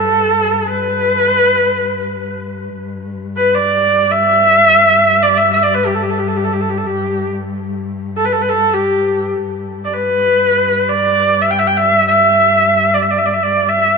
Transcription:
Already playing: G2 A4
0.67 B4
2.76 G2
3.37 B4
3.55 D5
4.11 E5
5.22 D5
5.38 E5
5.53 E5
5.63 D5
5.74 B4
5.86 G4
5.94 A4
6.02 G4
6.10 A4
6.19 G4
6.28 A4
6.36 G4
6.44 A4
6.53 G4
6.61 A4
6.70 G4
6.78 A4
6.86 G4
8.16 A4
8.25 B4
8.32 A4
8.42 B4
8.49 A4
8.73 G4
9.43 G2
9.84 D5
9.93 B4
10.89 D5
11.42 E5
11.51 G5
11.59 E5
11.67 G5
11.76 E5
12.08 E5
12.94 D5
13.02 E5
13.11 D5
13.18 E5
13.26 D5
13.34 E5
13.43 D5
13.68 E5

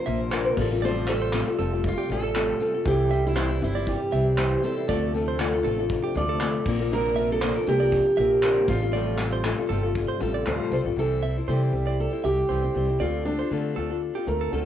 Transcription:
Already playing: C3 F3 A#3 D4 C5
0.06 A#1 A#3 C4 F4 A#4 E5, tambourine
0.31 A#2 D3 A#3 C4 F4 A#4 C5, clap
0.51 A#4
0.57 A1 G3 A3 C4 F4 A4, kick, tambourine, crash
0.71 G3 C4 F4 A4
0.82 A2 F3 G3 C4 F4 A4 C5 D5
1.08 G3 C4 F4 A4, clap, tambourine
1.22 C5
1.33 A2 F3 G3 C4 F4 A4, clap
1.48 G3 C4 F4 A4
1.58 F1 G3 C4 F4 A4, tambourine
1.73 G3 C4 F4 A4
1.84 kick
1.88 F4
1.98 G4
2.09 A1 G3 C4 F4 A4, tambourine
2.23 A4
2.34 A2 F3 G3 C4 F4 A4, clap
2.60 G3 C4 F4 A4, tambourine
2.74 G3 C4 F4 A4
2.85 C2 C3 E3 G3 C4 E4 G4 C5, kick
3.10 G3 C4 E4 C5 E5, tambourine
3.27 E4
3.35 C3 E3 G3 C4 E4 C5, clap
3.50 G3 C4 E4 C5
3.61 G1 G3 C4 E4 C5, tambourine
3.75 G3 C4 E4 C5 D5
3.87 G4, kick
4.12 C2 G3 C4 E4 C5 E5, tambourine
4.37 C3 E3 G3 C4 E4 C5, clap
4.62 G3 C4 E4 A4 C5, tambourine
4.76 G3 C4 E4 C5
4.87 D2 D3 F3 A3 C4 D4 F4 A4 D5, kick
5.14 A3 C4 F4 A4, tambourine
5.28 C5
5.39 D3 A3 C4 F4 A4, clap
5.54 C4 F4 A4
5.64 A1 A3 C4 F4 A4, tambourine
5.79 C4 F4 A4
5.90 kick
6.03 G4
6.15 D2 A3 C4 F4 A4 D5, tambourine
6.29 A4
6.40 D3 A3 C4 F4 A4, clap
6.65 A#1 A#3 C4 F4 A#4, kick, tambourine, crash
6.80 A#3 C4 F4 A#4
6.91 A#2 D3 A#3 C4 F4 A#4
7.16 A#3 C4 F4 A#4 E5, tambourine
7.32 A4
7.41 A#2 D3 A#3 C4 F4 A#4 C5, clap
7.55 A#3 C4 F4 A#4
7.67 C2 A#3 C4 F4 G4 A#4, tambourine
7.80 A#3 C4 F4 A#4 D5
7.92 kick
8.17 A#1 A#3 C4 F4 A#4 E5, tambourine
8.42 A#2 D3 A#3 C4 F4 A#4 C5, clap
8.67 A1 C3 G3 A3 C4 F4, kick, tambourine
8.71 A4
8.82 G3 C4 F4 A4
8.93 A2 F3 G3 C4 F4 A4 D5
9.18 G3 C4 F4 A4, clap, tambourine
9.33 C5
9.44 A2 F3 G3 C4 F4 A4, clap
9.58 G3 C4 F4 A4
9.69 G1 G3 C4 F4 A4, tambourine
9.83 G3 C4 F4 A4
9.95 kick
10.09 C5
10.20 A1 G3 C4 F4 A4, tambourine
10.34 D5
10.46 D2 A2 F3 G3 C4 F4 A4 C5, clap
10.71 C2 G3 C4 F4 A4 C5, tambourine
10.85 A1 G3 C4 F4 A4
10.96 C2 C3 E3 G3 C4 E4 A4 C5
11.22 G3 C4 E4 C5 E5
11.37 G3 C4 E4 C5
11.47 C3 E3 G3 C4 E4 G4 C5
11.72 C2 G3 C4 E4 C5
11.87 G3 C4 E4 C5 D5
12.00 A4
12.12 G3 C4 E4 C5
12.23 C2 G3 C4 E4 G4 C5 E5
12.49 C2 C3 E3 G3 C4 E4 C5
12.63 G3 C4 E4 C5
12.74 C2 G3 C4 E4 C5
12.89 G3 C4 E4 C5
13.00 D2 D3 A3 C4 F4 A4 D5
13.25 A3 C4 D4 F4 A4
13.39 C4 F4 A4 C5
13.51 D3 A3 C4 F4 A4
13.76 D2 A3 C4 F4 A4
13.90 C4 F4 A4
14.15 C4 F4 G4 A4
14.26 D2 A3 C4 F4 A4 A#4
14.41 A4
14.52 D2 D3 A3 C4 F4 A4

